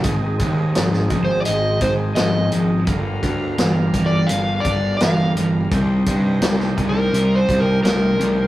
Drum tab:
HH |x-x-x-x-x-x-x-x-|x-x-x-x-x-x-x-x-|x-x-x-x-x-x-x-x-|
SD |----oo------o---|----o-------o---|----oo------o---|
BD |o-o---o---o-----|o-o---o---o-----|o-o---o---o-----|